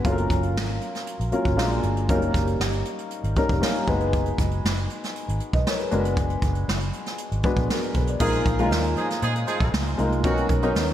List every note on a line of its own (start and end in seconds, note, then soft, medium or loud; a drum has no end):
0.05 0.79 F#3 medium
0.05 0.79 A#3 medium
0.05 0.79 C#4 medium
0.05 0.79 F4 medium
0.05 0.12 A4 medium
0.05 kick loud
0.05 closed hi-hat medium
0.12 0.82 A#4 medium
0.18 closed hi-hat soft
0.30 0.56 F#1 medium
0.30 kick medium
0.30 closed hi-hat medium
0.43 closed hi-hat soft
0.56 0.78 G#1 medium
0.56 snare loud
0.69 closed hi-hat soft
0.81 closed hi-hat medium
0.95 snare soft
0.95 closed hi-hat soft
1.07 closed hi-hat medium
1.20 1.31 A#1 medium
1.20 closed hi-hat medium
1.32 1.51 F#3 medium
1.32 1.51 A#3 medium
1.32 1.51 C#4 medium
1.32 1.51 F4 medium
1.32 1.51 A#4 medium
1.32 closed hi-hat medium
1.45 1.57 F#1 medium
1.45 kick medium
1.45 closed hi-hat soft
1.57 1.79 A#1 medium
1.57 1.94 G#3 medium
1.57 1.95 A#3 medium
1.57 1.95 D4 medium
1.57 1.95 F4 medium
1.57 1.95 A#4 medium
1.57 snare loud
1.71 closed hi-hat soft
1.83 2.09 G1 medium
1.83 closed hi-hat medium
1.97 closed hi-hat soft
2.09 2.31 F#1 medium
2.09 2.15 F#3 medium
2.09 2.83 A#3 medium
2.09 2.83 C#4 medium
2.09 2.83 D#4 medium
2.09 2.83 A#4 medium
2.09 kick loud
2.09 closed hi-hat medium
2.15 2.86 G3 medium
2.22 closed hi-hat medium
2.34 2.56 F#1 medium
2.34 kick medium
2.34 snare soft
2.34 closed hi-hat medium
2.47 closed hi-hat medium
2.60 2.82 G1 medium
2.60 snare loud
2.72 closed hi-hat soft
2.85 closed hi-hat medium
2.99 closed hi-hat soft
3.11 closed hi-hat medium
3.24 3.35 G#1 medium
3.24 closed hi-hat soft
3.36 3.55 G3 medium
3.36 3.55 A#3 medium
3.36 3.55 C#4 medium
3.36 3.55 D#4 medium
3.36 3.56 A#4 medium
3.36 kick medium
3.36 closed hi-hat medium
3.49 3.60 F1 medium
3.49 kick medium
3.49 closed hi-hat soft
3.61 3.87 G3 medium
3.61 3.87 A#3 medium
3.61 3.87 C#4 medium
3.61 3.87 D#4 medium
3.61 3.88 A#4 medium
3.61 snare loud
3.75 closed hi-hat soft
3.87 4.31 F#1 medium
3.87 4.69 G#3 medium
3.87 4.69 B3 medium
3.87 4.69 D#4 medium
3.87 4.69 F#4 medium
3.87 4.70 B4 medium
3.87 kick medium
3.87 closed hi-hat medium
4.00 closed hi-hat soft
4.13 kick loud
4.13 closed hi-hat medium
4.26 closed hi-hat soft
4.38 4.60 F#1 medium
4.38 kick loud
4.38 snare soft
4.38 closed hi-hat medium
4.51 closed hi-hat soft
4.65 4.86 F#1 medium
4.65 snare loud
4.77 closed hi-hat soft
4.90 closed hi-hat medium
5.04 snare soft
5.04 closed hi-hat soft
5.16 closed hi-hat medium
5.28 5.39 G#1 medium
5.28 closed hi-hat medium
5.40 closed hi-hat medium
5.53 5.64 B1 medium
5.53 5.66 B4 soft
5.53 5.66 D#5 medium
5.53 kick medium
5.53 closed hi-hat soft
5.67 5.79 A#4 medium
5.67 5.79 C#5 medium
5.67 snare medium
5.79 6.04 G#4 soft
5.79 5.97 B4 medium
5.79 closed hi-hat soft
5.91 6.35 F#1 medium
5.91 6.73 G#3 medium
5.91 6.73 B3 medium
5.91 6.73 D4 medium
5.91 6.73 F#4 medium
5.91 5.98 A#4 medium
5.91 closed hi-hat medium
5.99 6.77 B4 medium
6.05 closed hi-hat medium
6.17 kick loud
6.17 closed hi-hat medium
6.30 closed hi-hat soft
6.42 6.64 F#1 medium
6.42 kick medium
6.42 closed hi-hat medium
6.55 closed hi-hat soft
6.68 6.90 F#1 medium
6.68 snare loud
6.80 closed hi-hat soft
6.93 closed hi-hat medium
7.06 snare soft
7.06 closed hi-hat soft
7.18 closed hi-hat medium
7.32 7.42 G#1 medium
7.32 closed hi-hat medium
7.43 7.62 G#3 medium
7.43 7.63 B3 medium
7.43 7.62 D4 medium
7.43 7.63 F#4 medium
7.43 7.63 B4 medium
7.43 kick medium
7.43 closed hi-hat medium
7.56 7.68 A#1 medium
7.56 kick medium
7.56 closed hi-hat soft
7.70 7.95 F#4 medium
7.70 7.94 A#4 medium
7.70 snare loud
7.83 closed hi-hat soft
7.94 8.16 B1 medium
7.94 8.08 G#4 soft
7.94 8.08 B4 medium
7.94 kick medium
7.94 closed hi-hat medium
8.07 8.33 B4 soft
8.07 8.33 D5 medium
8.07 closed hi-hat soft
8.19 8.42 A#1 medium
8.19 8.40 F3 loud
8.19 8.48 G#3 medium
8.19 8.48 A#3 medium
8.19 8.40 D#4 loud
8.19 8.48 D#4 medium
8.19 8.48 F4 medium
8.19 8.40 G#4 loud
8.19 8.49 A#4 medium
8.19 kick loud
8.19 crash medium
8.33 closed hi-hat medium
8.46 8.72 A#1 medium
8.46 kick loud
8.46 closed hi-hat medium
8.46 muted conga soft
8.58 8.69 A#2 medium
8.58 8.69 G#3 medium
8.58 9.33 G#3 medium
8.58 9.33 A#3 medium
8.58 8.65 C#4 medium
8.58 8.69 F4 medium
8.58 9.33 F4 medium
8.58 9.33 A#4 medium
8.58 closed hi-hat medium
8.66 9.36 D#4 medium
8.71 8.93 D#2 medium
8.71 snare loud
8.71 high conga medium
8.84 closed hi-hat soft
8.96 9.07 F3 medium
8.96 9.07 D#4 medium
8.96 9.07 G#4 medium
8.96 closed hi-hat medium
8.96 muted conga soft
8.96 low conga medium
9.10 snare soft
9.10 closed hi-hat soft
9.22 9.44 A#2 loud
9.22 9.33 F3 medium
9.22 9.33 D#4 medium
9.22 9.32 G#4 loud
9.22 closed hi-hat medium
9.22 muted conga soft
9.35 closed hi-hat medium
9.47 9.68 F3 loud
9.47 9.68 D#4 medium
9.47 9.68 G#4 medium
9.47 closed hi-hat medium
9.47 muted conga soft
9.60 9.71 A#1 medium
9.60 kick medium
9.60 closed hi-hat soft
9.73 9.95 C#2 medium
9.73 snare loud
9.73 high conga medium
9.87 closed hi-hat soft
9.98 10.24 C2 medium
9.98 10.17 G#3 medium
9.98 10.17 A#3 medium
9.98 10.17 D#4 medium
9.98 10.17 F4 medium
9.98 10.17 A#4 medium
9.98 closed hi-hat medium
10.10 closed hi-hat soft
10.10 high conga medium
10.23 10.46 B1 medium
10.23 10.44 D#3 loud
10.23 10.51 F#3 medium
10.23 10.52 B3 medium
10.23 10.44 C#4 medium
10.23 10.52 C#4 medium
10.23 10.52 D#4 medium
10.23 10.44 F#4 loud
10.23 10.52 A#4 medium
10.23 kick loud
10.23 closed hi-hat medium
10.37 closed hi-hat soft
10.49 10.71 B1 medium
10.49 kick medium
10.49 closed hi-hat medium
10.49 muted conga soft
10.61 10.72 A#2 medium
10.61 10.72 F#3 medium
10.61 10.94 F#3 medium
10.61 10.94 B3 medium
10.61 10.94 C#4 medium
10.61 10.72 D#4 medium
10.61 10.94 D#4 medium
10.61 10.94 A#4 medium
10.61 closed hi-hat medium
10.75 10.94 D#2 medium
10.75 snare loud
10.75 high conga medium
10.88 closed hi-hat medium